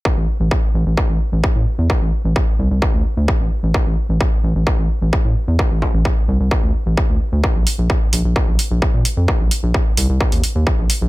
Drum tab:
HH |----------------|----------------|----------------|----------------|
BD |o---o---o---o---|o---o---o---o---|o---o---o---o---|o-o-o---o---o---|

HH |--o---o---o---o-|--o---o--oo---o-|
BD |o---o---o---o---|o---o---o---o---|